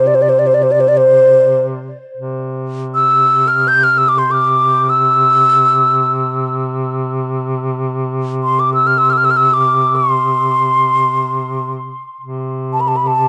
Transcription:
0.00 2.00 C3 medium
0.07 0.16 D5 medium
0.15 0.24 C5 medium
0.22 0.31 D5 medium
0.29 0.41 C5 medium
0.39 0.48 D5 medium
0.47 0.56 C5 medium
0.54 0.64 D5 medium
0.63 0.73 C5 medium
0.72 0.82 D5 medium
0.80 0.90 C5 medium
0.88 0.99 D5 medium
0.97 1.66 C5 medium
2.17 12.04 C3 medium
2.95 3.49 E6 medium
3.48 3.69 F6 medium
3.68 3.85 G6 medium
3.84 4.00 F6 medium
3.98 4.10 E6 medium
4.09 4.20 D6 medium
4.18 4.33 C6 medium
4.31 4.91 D6 medium
4.90 6.65 E6 medium
8.44 8.61 C6 medium
8.60 8.73 D6 medium
8.74 8.88 E6 medium
8.87 8.99 F6 medium
8.98 9.11 E6 medium
9.10 9.19 E6 medium
9.10 9.14 F6 medium
9.17 9.26 F6 medium
9.25 9.32 E6 medium
9.31 9.38 F6 medium
9.37 9.55 E6 medium
9.54 9.97 D6 medium
9.96 11.73 C6 medium
12.21 13.28 C3 medium
12.73 12.82 A5 medium
12.81 12.89 B5 medium
12.88 12.98 A5 medium
12.97 13.09 B5 medium
13.07 13.28 A5 medium

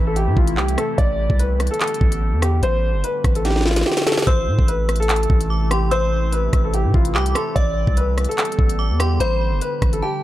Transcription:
0.00 0.29 A1 loud
0.00 0.95 C3 medium
0.00 0.95 E3 medium
0.00 0.95 A3 medium
0.00 0.95 E4 medium
0.07 0.15 A4 medium
0.16 0.34 G4 medium
0.16 closed hi-hat medium
0.27 0.36 A2 loud
0.36 0.59 A1 loud
0.36 0.54 F4 medium
0.36 kick medium
0.47 closed hi-hat medium
0.57 0.77 C2 loud
0.57 0.75 G4 medium
0.57 clap loud
0.68 closed hi-hat medium
0.78 0.96 A4 medium
0.78 cross-stick loud
0.78 closed hi-hat medium
0.98 1.29 A1 loud
0.98 4.24 D3 medium
0.98 2.61 G3 medium
0.98 2.61 B3 medium
0.98 2.61 G4 medium
0.98 1.37 D5 loud
0.98 kick loud
0.98 closed hi-hat medium
1.30 1.69 C2 loud
1.30 kick medium
1.39 1.69 B4 medium
1.39 closed hi-hat medium
1.60 cross-stick medium
1.60 closed hi-hat medium
1.67 1.79 A4 medium
1.67 closed hi-hat medium
1.74 closed hi-hat medium
1.80 2.39 A4 medium
1.80 clap loud
1.80 closed hi-hat medium
1.87 closed hi-hat medium
1.94 closed hi-hat medium
2.01 2.34 A1 loud
2.01 kick medium
2.12 closed hi-hat medium
2.32 2.61 E2 loud
2.42 2.60 G4 medium
2.42 cross-stick loud
2.42 closed hi-hat loud
2.63 2.96 A1 loud
2.63 4.25 F3 medium
2.63 4.26 A3 medium
2.63 4.25 F4 medium
2.63 3.02 C5 loud
2.63 closed hi-hat medium
2.94 3.03 G1 loud
3.04 3.34 B4 medium
3.04 closed hi-hat medium
3.24 3.84 A1 loud
3.24 kick medium
3.24 cross-stick medium
3.24 closed hi-hat medium
3.35 3.44 A4 medium
3.35 closed hi-hat medium
3.45 3.63 G4 medium
3.45 snare medium
3.45 closed hi-hat medium
3.50 snare medium
3.56 snare medium
3.61 snare medium
3.66 3.83 F4 medium
3.66 snare medium
3.71 snare medium
3.76 snare medium
3.76 closed hi-hat medium
3.81 snare medium
3.86 4.04 G4 medium
3.86 snare medium
3.92 snare medium
3.97 snare loud
3.97 closed hi-hat medium
4.02 snare medium
4.07 4.24 A4 medium
4.07 snare loud
4.07 closed hi-hat medium
4.12 snare loud
4.18 snare loud
4.22 snare loud
4.27 4.49 A1 loud
4.27 7.53 C3 medium
4.27 7.53 E3 medium
4.27 7.53 A3 medium
4.27 7.53 E4 medium
4.27 4.66 C5 loud
4.27 5.46 E6 loud
4.27 kick loud
4.27 closed hi-hat medium
4.48 4.58 A2 loud
4.59 5.27 A1 loud
4.59 kick medium
4.68 4.98 B4 medium
4.68 closed hi-hat medium
4.89 cross-stick medium
4.89 closed hi-hat medium
4.96 closed hi-hat medium
5.00 5.08 A4 medium
5.00 closed hi-hat medium
5.09 5.67 A4 medium
5.09 clap loud
5.09 closed hi-hat medium
5.16 closed hi-hat medium
5.23 closed hi-hat medium
5.30 6.49 A1 loud
5.30 kick medium
5.41 closed hi-hat medium
5.50 5.70 D6 medium
5.71 5.89 G4 medium
5.71 5.91 C6 medium
5.71 cross-stick loud
5.71 closed hi-hat loud
5.91 6.30 C5 loud
5.91 7.11 E6 loud
5.91 closed hi-hat medium
6.33 6.62 B4 medium
6.33 closed hi-hat medium
6.53 6.86 A1 loud
6.53 kick medium
6.53 cross-stick medium
6.53 closed hi-hat medium
6.64 6.73 A4 medium
6.74 6.92 G4 medium
6.74 closed hi-hat medium
6.85 6.94 A2 loud
6.94 7.16 A1 loud
6.94 7.12 F4 medium
6.94 kick medium
7.05 closed hi-hat medium
7.15 7.34 C2 loud
7.15 7.33 G4 medium
7.15 7.34 D6 medium
7.15 clap loud
7.26 closed hi-hat medium
7.35 7.53 A4 medium
7.35 7.55 C6 medium
7.35 cross-stick loud
7.35 closed hi-hat medium
7.56 7.86 A1 loud
7.56 10.23 D3 medium
7.56 9.19 G3 medium
7.56 9.19 B3 medium
7.56 9.19 G4 medium
7.56 7.94 D5 loud
7.56 8.75 E6 loud
7.56 kick loud
7.56 closed hi-hat medium
7.87 8.27 C2 loud
7.87 kick medium
7.97 8.27 B4 medium
7.97 closed hi-hat medium
8.18 cross-stick medium
8.18 closed hi-hat medium
8.25 closed hi-hat medium
8.29 8.37 A4 medium
8.29 closed hi-hat medium
8.38 8.96 A4 medium
8.38 clap loud
8.38 closed hi-hat medium
8.45 closed hi-hat medium
8.52 closed hi-hat medium
8.59 8.92 A1 loud
8.59 kick medium
8.69 closed hi-hat medium
8.79 8.99 D6 medium
8.90 9.19 E2 loud
9.00 9.17 G4 medium
9.00 9.19 C6 medium
9.00 cross-stick loud
9.00 closed hi-hat loud
9.20 9.53 A1 loud
9.20 10.23 F3 medium
9.20 10.23 A3 medium
9.20 10.23 F4 medium
9.20 9.59 C5 loud
9.20 9.98 B5 loud
9.20 closed hi-hat medium
9.52 9.61 G1 loud
9.61 9.91 B4 medium
9.61 closed hi-hat medium
9.82 10.02 A1 loud
9.82 kick medium
9.82 cross-stick medium
9.82 closed hi-hat medium
9.93 10.01 A4 medium
9.93 closed hi-hat medium
10.02 10.20 G4 medium
10.02 10.23 A5 medium

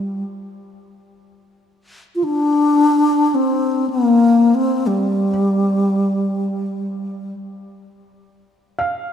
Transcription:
0.00 0.23 G3 medium
0.00 5.29 G5 soft
2.15 2.25 F4 medium
2.24 3.36 D4 medium
3.35 3.90 C4 medium
3.90 4.56 A#3 medium
4.55 4.88 C4 medium
4.87 7.33 G3 medium
8.79 9.13 F5 soft

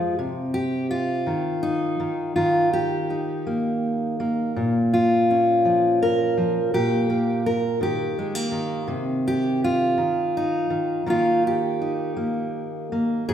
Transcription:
0.00 0.17 F2 medium
0.00 0.14 F3 medium
0.00 0.18 G#3 soft
0.00 0.17 F4 medium
0.19 1.27 C3 medium
0.54 0.90 G4 medium
0.91 2.35 F4 medium
1.27 1.99 D#3 medium
1.63 2.36 D#4 medium
2.00 2.36 D#3 medium
2.36 4.56 D#3 medium
2.36 2.73 F4 medium
2.73 4.56 G4 medium
3.10 4.52 D#4 soft
3.47 4.19 A#3 soft
4.20 7.09 A#3 medium
4.56 6.73 A#2 medium
4.94 6.02 F4 medium
5.30 6.71 C#4 soft
5.65 6.36 F3 medium
6.03 6.74 A#4 medium
6.37 6.70 F3 medium
6.74 7.82 A#2 medium
6.74 7.46 G4 medium
7.10 8.18 A#3 soft
7.46 7.82 A#4 medium
7.81 8.50 D#3 medium
7.81 8.91 G4 medium
8.19 8.35 G#3 soft
8.35 8.90 A#3 soft
8.52 9.97 D#3 medium
8.88 9.98 C3 medium
9.28 9.63 G4 medium
9.64 11.09 F4 medium
9.98 10.69 D#3 medium
10.37 11.07 D#4 medium
10.70 11.05 D#3 medium
11.06 13.34 D#3 medium
11.06 12.15 A#3 soft
11.06 11.80 D#4 soft
11.06 11.46 F4 medium
11.47 13.28 G4 medium
11.82 13.25 D#4 soft
12.17 12.91 A#3 medium
12.92 13.25 A#3 medium
13.29 13.34 G#2 medium
13.29 13.34 G#4 medium

